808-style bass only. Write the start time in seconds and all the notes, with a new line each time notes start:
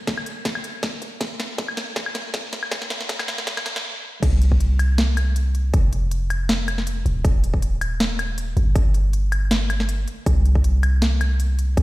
Already playing: F1
1.02 D#1
2.53 G1
4.23 C2
5.74 F1
7.06 D#1
8.57 G1
10.26 C2
11.77 F1